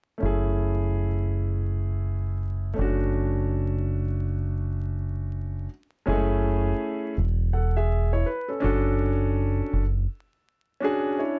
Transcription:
0.18 2.72 A3 medium
0.18 2.73 C#4 medium
0.22 2.74 F#1 medium
0.22 2.74 E4 medium
0.22 2.76 G#4 medium
2.74 5.65 A3 medium
2.74 5.66 C#4 medium
2.79 5.67 F#1 medium
2.79 5.67 D4 medium
2.79 5.68 F#4 medium
6.06 6.72 F#1 medium
6.06 6.15 G#3 medium
6.06 7.14 C#4 medium
6.06 7.14 E4 medium
6.06 7.15 G#4 medium
6.12 7.16 A3 medium
7.17 8.23 E1 medium
7.53 7.75 A4 soft
7.53 7.75 F#5 medium
7.77 8.12 G#4 medium
7.77 8.11 E5 medium
8.13 8.26 E4 medium
8.13 8.26 C#5 medium
8.26 8.48 B4 medium
8.48 8.59 C#4 soft
8.48 8.63 A4 medium
8.60 9.61 F#1 medium
8.60 9.81 C#4 medium
8.60 9.81 D4 medium
8.60 9.82 F#4 medium
8.60 9.83 A4 medium
9.73 10.06 F#1 medium
10.80 11.38 C#4 medium
10.80 11.39 D4 medium
10.80 11.20 F#4 medium
10.80 11.20 G#4 medium
11.19 11.39 E4 medium
11.19 11.39 C#5 medium

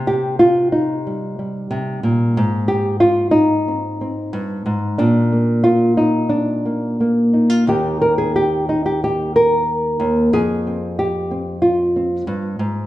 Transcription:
0.00 1.69 C3 medium
0.00 1.06 G3 soft
0.07 0.39 G4 medium
0.39 0.72 F4 medium
0.72 2.36 D#4 medium
1.07 1.38 G3 soft
1.39 2.37 G3 soft
1.71 2.03 C3 medium
2.03 2.36 A#2 medium
2.37 4.33 G#2 medium
2.68 3.00 G4 medium
3.00 3.31 F4 medium
3.31 4.98 D#4 medium
3.68 4.00 C4 soft
4.01 4.96 C4 soft
4.33 4.65 G2 medium
4.66 4.99 G#2 medium
4.98 7.67 A#2 medium
4.98 6.28 D4 medium
5.32 6.64 A#3 soft
5.64 5.97 F4 medium
5.97 6.31 D#4 medium
6.29 7.66 D4 medium
6.65 6.99 A#3 soft
7.00 7.64 A#3 soft
7.33 7.50 D#4 soft
7.50 7.67 F4 soft
7.67 9.98 D#2 medium
7.67 10.33 D#3 soft
7.67 10.30 A#3 soft
7.67 8.68 D#4 soft
7.67 8.01 G4 medium
8.02 8.18 A#4 medium
8.18 8.35 G#4 medium
8.36 8.69 G4 medium
8.69 8.85 D#4 medium
8.86 9.02 G4 medium
9.04 9.35 G4 medium
9.36 10.33 A#4 medium
10.00 10.33 D#2 medium
10.33 12.27 F2 medium
10.33 10.98 G#4 medium
10.67 11.30 C4 soft
10.99 11.61 G4 medium
11.31 11.95 C4 soft
11.62 12.87 F4 medium
11.96 12.87 C4 soft
12.27 12.59 G2 medium
12.59 12.87 G#2 medium

